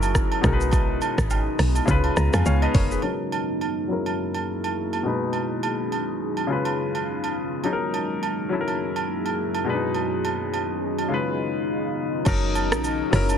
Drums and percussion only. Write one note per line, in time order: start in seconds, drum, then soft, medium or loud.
0.03 high agogo medium
0.03 shaker medium
0.15 kick medium
0.15 cross-stick medium
0.15 shaker medium
0.32 high agogo medium
0.44 kick loud
0.44 cross-stick loud
0.44 shaker medium
0.61 shaker medium
0.71 kick loud
0.71 high agogo medium
0.71 shaker medium
1.01 high agogo medium
1.01 shaker soft
1.18 kick medium
1.18 cross-stick loud
1.18 shaker medium
1.30 high agogo medium
1.30 low woodblock medium
1.30 shaker medium
1.59 cross-stick medium
1.59 open hi-hat medium
1.59 shaker soft
1.75 high agogo medium
1.75 shaker medium
1.88 kick loud
1.88 shaker medium
2.04 high agogo medium
2.17 cross-stick medium
2.17 shaker medium
2.33 cross-stick loud
2.33 high agogo medium
2.33 shaker medium
2.46 low woodblock medium
2.46 shaker medium
2.62 high agogo medium
2.75 kick loud
2.75 open hi-hat medium
2.75 shaker medium
2.91 shaker medium
3.02 high agogo medium
3.32 high agogo medium
3.61 high agogo medium
4.06 high agogo medium
4.34 high agogo medium
4.64 high agogo medium
4.93 high agogo medium
5.33 high agogo medium
5.63 high agogo medium
5.92 high agogo medium
6.37 high agogo medium
6.65 high agogo medium
6.95 high agogo medium
7.24 high agogo medium
7.64 high agogo medium
7.94 high agogo medium
8.23 high agogo medium
8.68 high agogo medium
8.96 high agogo medium
9.26 high agogo medium
9.55 high agogo medium
9.94 high agogo medium
10.25 high agogo medium
10.54 high agogo medium
10.98 high agogo medium
12.25 kick loud
12.25 crash loud
12.25 high agogo medium
12.25 shaker medium
12.55 high agogo medium
12.55 shaker medium
12.72 cross-stick loud
12.72 shaker medium
12.84 high agogo medium
12.84 shaker medium
13.13 cross-stick medium
13.13 open hi-hat medium
13.13 shaker soft
13.29 high agogo medium
13.29 shaker medium